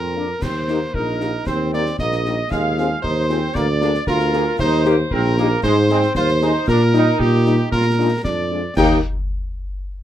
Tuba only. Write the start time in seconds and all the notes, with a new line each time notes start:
Already playing: F2
0.42 D#2
0.95 A#1
1.47 D#2
1.99 A#1
2.51 D#2
3.03 D#2
3.56 D2
4.07 D2
4.59 D#2
5.11 A#1
5.63 G#2
6.15 D#2
6.67 A#2
7.20 A#2
7.71 A#2
8.24 F2
8.76 D#2